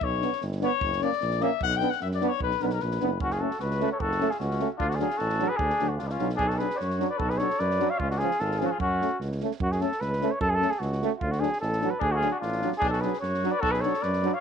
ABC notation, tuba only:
X:1
M:2/4
L:1/8
Q:"Swing 16ths" 1/4=150
K:Bm
V:1 name="Tuba" clef=bass
B,,,2 G,,,2 | F,,,2 ^A,,,2 | B,,,2 F,,2 | B,,, B,,, ^A,,, F,,, |
[K:F#m] F,,,2 C,,2 | F,,,2 C,,2 | D,,2 A,,,2 | D,, D,, C,, B,,, |
B,,,2 F,,2 | B,,,2 F,,2 | C,,2 G,,,2 | F,,2 C,,2 |
F,,2 C,,2 | F,,2 C,,2 | D,,2 A,,,2 | D,,2 A,,,2 |
B,,,2 F,,2 | B,,,2 F,,2 |]